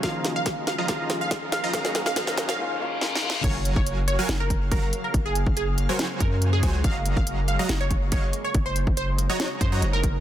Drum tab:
CC |------------------------------------------------|------------------------------------------------|x-----------------------------------------------|------------------------------------------------|
HH |x-----x-----x-----x-----x-----x-----x-----x-----|x-----x-----x-----x-----------------------------|x-----x-----x-----x-----x-----x-----x-----x-----|x-----x-----x-----x-----x-----x-----x-----x-----|
SD |o-----o-----o-----o-----o-----o-----o-----o-----|o--o--o--o--o--o--o--o--------------o---o---o---|------------------------o-----------------------|------------------------o-----------------------|
BD |o-----------o-----------o-----------o-----------|o-----------o-----------------------------------|o--------o--------------------o-----o-----------|o--------o--------------------o-----------o-----|

CC |------------------------------------------------|------------------------------------------------|
HH |x-----x-----x-----x-----x-----x-----x-----x-----|x-----x-----x-----x-----x-----x-----x-----x-----|
SD |------------------------o-----------------------|------------------------o-----------------------|
BD |o--------o--------------------o-----o-----------|o--------o--------------------o-----------o-----|